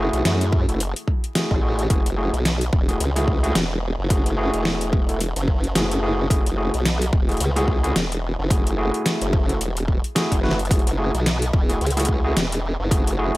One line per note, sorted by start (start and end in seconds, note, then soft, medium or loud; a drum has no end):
0.00 0.11 F#1 medium
0.00 0.64 A3 medium
0.00 0.64 E4 medium
0.00 0.64 F#4 medium
0.00 0.64 G#4 loud
0.13 0.23 B1 medium
0.13 closed hi-hat soft
0.25 0.66 F#2 medium
0.25 snare loud
0.25 closed hi-hat medium
0.41 closed hi-hat soft
0.53 kick loud
0.68 0.93 F#1 medium
0.68 0.79 A3 medium
0.68 0.79 E4 medium
0.68 0.79 F#4 medium
0.68 0.79 A4 medium
0.68 closed hi-hat soft
0.80 closed hi-hat medium
0.96 closed hi-hat medium
1.08 kick medium
1.24 closed hi-hat soft
1.35 1.60 A3 medium
1.35 1.60 E4 medium
1.35 1.60 F#4 medium
1.35 1.60 G#4 medium
1.35 snare loud
1.35 closed hi-hat medium
1.51 1.88 A1 medium
1.51 kick medium
1.63 1.84 A3 medium
1.63 1.84 E4 medium
1.63 1.84 F#4 medium
1.63 1.84 G#4 medium
1.79 closed hi-hat soft
1.90 2.03 F#1 medium
1.90 2.05 A3 medium
1.90 2.05 E4 medium
1.90 2.05 F#4 medium
1.90 2.05 G#4 medium
1.90 kick loud
1.90 closed hi-hat medium
2.06 2.31 F#1 loud
2.06 closed hi-hat soft
2.18 2.33 A3 medium
2.18 2.33 E4 medium
2.18 2.33 F#4 medium
2.18 2.32 G#4 medium
2.33 2.71 B1 medium
2.33 closed hi-hat soft
2.45 snare loud
2.45 closed hi-hat medium
2.61 closed hi-hat soft
2.73 2.98 E1 medium
2.73 kick loud
2.88 2.99 A3 medium
2.88 2.99 E4 medium
2.88 2.99 F#4 medium
2.88 2.99 G#4 loud
2.88 closed hi-hat soft
3.00 3.54 C#2 medium
3.00 closed hi-hat medium
3.16 3.40 A3 medium
3.16 3.40 E4 medium
3.16 3.40 F#4 medium
3.16 3.40 G#4 loud
3.16 snare soft
3.16 closed hi-hat medium
3.28 kick medium
3.43 3.54 A3 medium
3.43 3.54 E4 medium
3.43 3.54 F#4 medium
3.43 3.54 G#4 loud
3.43 closed hi-hat soft
3.55 3.96 E1 medium
3.55 snare loud
3.55 closed hi-hat medium
3.99 4.51 F#1 loud
4.10 4.32 A3 medium
4.10 4.32 E4 medium
4.10 4.32 F#4 medium
4.10 4.32 G#4 medium
4.10 kick loud
4.10 closed hi-hat medium
4.26 closed hi-hat soft
4.38 5.05 A3 medium
4.38 5.05 E4 medium
4.38 5.05 F#4 medium
4.38 5.05 G#4 loud
4.54 5.34 E1 medium
4.54 closed hi-hat soft
4.65 snare loud
4.81 closed hi-hat soft
4.93 kick medium
5.09 5.19 A3 medium
5.09 5.19 E4 medium
5.09 5.20 F#4 medium
5.09 5.19 A4 medium
5.09 closed hi-hat soft
5.20 closed hi-hat medium
5.36 5.74 F#1 loud
5.36 closed hi-hat soft
5.48 kick medium
5.64 closed hi-hat soft
5.75 6.29 F#1 medium
5.75 6.00 A3 medium
5.75 6.00 E4 medium
5.75 6.00 F#4 medium
5.75 6.00 G#4 medium
5.75 snare loud
5.75 closed hi-hat medium
5.91 closed hi-hat soft
6.03 6.25 A3 medium
6.03 6.25 E4 medium
6.03 6.24 F#4 medium
6.03 6.25 G#4 medium
6.30 6.44 F#1 medium
6.30 6.45 A3 medium
6.30 6.45 E4 medium
6.30 6.45 F#4 medium
6.30 6.45 G#4 medium
6.30 kick loud
6.30 closed hi-hat medium
6.46 6.71 F#1 medium
6.46 closed hi-hat soft
6.57 6.73 A3 medium
6.57 6.73 E4 medium
6.57 6.73 F#4 medium
6.57 6.73 G#4 medium
6.74 7.11 B1 medium
6.74 closed hi-hat soft
6.85 snare loud
6.85 closed hi-hat medium
7.02 closed hi-hat medium
7.13 7.39 E1 loud
7.13 kick loud
7.28 7.40 A3 medium
7.28 7.40 E4 medium
7.28 7.40 F#4 medium
7.28 7.40 G#4 medium
7.28 closed hi-hat soft
7.32 closed hi-hat soft
7.37 closed hi-hat soft
7.40 7.94 C#2 loud
7.40 closed hi-hat medium
7.56 7.80 A3 medium
7.56 7.80 E4 medium
7.56 7.80 F#4 medium
7.56 7.80 G#4 loud
7.56 snare soft
7.56 closed hi-hat soft
7.68 kick medium
7.83 7.95 A3 medium
7.83 7.95 E4 medium
7.83 7.95 F#4 medium
7.83 7.95 G#4 loud
7.83 closed hi-hat soft
7.96 8.36 E1 medium
7.96 snare loud
7.96 closed hi-hat medium
8.12 closed hi-hat soft
8.39 8.92 F#1 loud
8.50 8.72 A3 medium
8.50 8.72 E4 medium
8.50 8.72 F#4 medium
8.50 8.72 G#4 medium
8.50 kick loud
8.50 closed hi-hat medium
8.67 closed hi-hat medium
8.78 9.45 A3 medium
8.78 9.45 E4 medium
8.78 9.45 F#4 medium
8.78 9.45 G#4 loud
8.94 closed hi-hat soft
9.06 snare loud
9.06 closed hi-hat medium
9.22 9.59 F#1 loud
9.22 closed hi-hat medium
9.33 kick medium
9.49 9.60 A3 medium
9.49 9.60 E4 medium
9.49 9.60 F#4 medium
9.49 9.60 A4 medium
9.49 closed hi-hat soft
9.61 10.02 E1 medium
9.61 closed hi-hat medium
9.77 closed hi-hat medium
9.88 kick medium
10.04 closed hi-hat soft
10.15 10.37 A3 medium
10.15 10.37 E4 medium
10.15 10.37 F#4 medium
10.15 10.37 G#4 loud
10.15 snare loud
10.15 closed hi-hat medium
10.32 10.69 F#1 loud
10.32 kick medium
10.32 snare soft
10.32 closed hi-hat medium
10.43 10.58 A3 loud
10.43 10.58 E4 medium
10.43 10.58 F#4 medium
10.43 10.58 B4 loud
10.43 snare soft
10.49 snare soft
10.51 snare medium
10.51 snare soft
10.59 closed hi-hat soft
10.65 closed hi-hat soft
10.70 10.84 F#1 medium
10.70 10.85 A3 medium
10.70 10.85 E4 medium
10.70 10.85 F#4 medium
10.70 10.86 G#4 medium
10.70 kick loud
10.70 closed hi-hat medium
10.79 closed hi-hat soft
10.87 11.12 F#1 loud
10.87 closed hi-hat medium
10.98 11.13 A3 medium
10.98 11.13 E4 medium
10.98 11.13 F#4 medium
10.98 11.13 G#4 medium
11.14 11.52 B1 medium
11.14 closed hi-hat soft
11.26 snare loud
11.26 closed hi-hat medium
11.42 closed hi-hat medium
11.53 11.79 E1 medium
11.53 kick loud
11.69 11.80 A3 medium
11.69 11.80 E4 medium
11.69 11.80 F#4 medium
11.69 11.80 G#4 loud
11.69 closed hi-hat soft
11.81 12.34 C#2 loud
11.81 closed hi-hat soft
11.86 closed hi-hat soft
11.90 closed hi-hat soft
11.97 12.21 A3 loud
11.97 12.20 E4 medium
11.97 12.21 F#4 medium
11.97 12.21 G#4 loud
11.97 snare soft
11.97 closed hi-hat medium
12.00 closed hi-hat medium
12.05 kick medium
12.05 closed hi-hat medium
12.24 12.35 A3 medium
12.24 12.35 E4 medium
12.24 12.35 F#4 medium
12.24 12.35 G#4 loud
12.36 12.77 E1 medium
12.36 snare loud
12.36 closed hi-hat medium
12.52 closed hi-hat medium
12.80 13.32 F#1 loud
12.91 13.13 A3 medium
12.91 13.13 E4 medium
12.91 13.13 F#4 medium
12.91 13.13 G#4 medium
12.91 kick loud
12.91 closed hi-hat medium
13.07 closed hi-hat medium
13.19 13.37 A3 medium
13.19 13.37 E4 medium
13.19 13.37 F#4 medium
13.19 13.37 G#4 loud